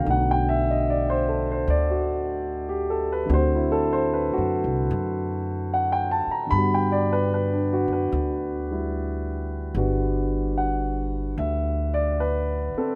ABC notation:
X:1
M:4/4
L:1/16
Q:"Swing" 1/4=74
K:G
V:1 name="Grand piano"
f g e _e d c A c d F z3 G A B | c E A c B F z6 f g a _b | b g d B B D F B8- B- | B z3 f4 e2 d2 B2 [CA]2 |]
V:2 name="Grand piano"
[D,A,B,F]16 | [D,A,CF]16 | [D,B,FG]8- [D,B,FG]2 [G,E]6 | [D,G,FB]16 |]
V:3 name="Upright bass" clef=bass
B,,,8 D,,8 | D,,4- (3D,,2 F,,2 C,,2 F,,6 z2 | G,,6 F,,2 D,,8 | G,,,8 D,,6 z2 |]